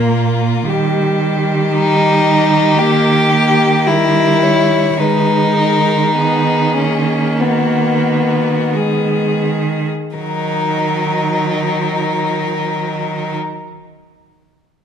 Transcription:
Already playing: A#2 A#3 F4
0.69 D#3 G3 G4
1.74 G3 D#4
2.79 A#3 G4
3.32 A#3
3.87 G3 E4 A#4
4.43 C#5
4.98 D#3 G#3 D#4 B4
5.58 A#4
6.16 B3 G#4
6.76 A#3 C#4
7.41 B3 F#4
8.74 G#3 G#4
10.16 D#3 F#3 D#4 A#4

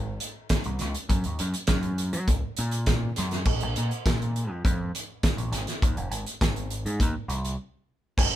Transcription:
Already playing: G#1
0.20 closed hi-hat
0.49 kick, snare, closed hi-hat
0.64 C2, closed hi-hat
0.79 C#2, snare, closed hi-hat
0.94 closed hi-hat
1.09 F#2, kick, closed hi-hat
1.24 D#2, closed hi-hat
1.39 F#2, closed hi-hat
1.54 closed hi-hat
1.67 F#2, kick, snare, closed hi-hat
1.83 closed hi-hat
1.98 closed hi-hat
2.13 F#3, closed hi-hat
2.28 C#2, kick, closed hi-hat
2.57 A#2, closed hi-hat
2.71 closed hi-hat
2.86 kick, snare, closed hi-hat
3.16 F#2, snare, closed hi-hat
3.31 snare, closed hi-hat
3.45 A#1, kick, crash
3.60 A#1, closed hi-hat
3.76 A#2, closed hi-hat
3.91 closed hi-hat
4.06 A#2, kick, snare, closed hi-hat
4.22 closed hi-hat
4.36 closed hi-hat
4.50 F2
4.65 F2, kick, closed hi-hat
4.95 closed hi-hat
5.23 kick, snare, closed hi-hat
5.37 A#1, closed hi-hat
5.52 G#1, snare, closed hi-hat
5.67 snare, closed hi-hat
5.82 D#2, kick, closed hi-hat
5.97 F1, closed hi-hat
6.11 G#1, closed hi-hat
6.26 closed hi-hat
6.41 G#1, kick, snare, closed hi-hat
6.56 closed hi-hat
6.70 closed hi-hat
6.86 G#2, closed hi-hat
7.00 D#2, kick, closed hi-hat
7.28 C2, closed hi-hat
7.45 closed hi-hat
8.18 F#1, kick, crash

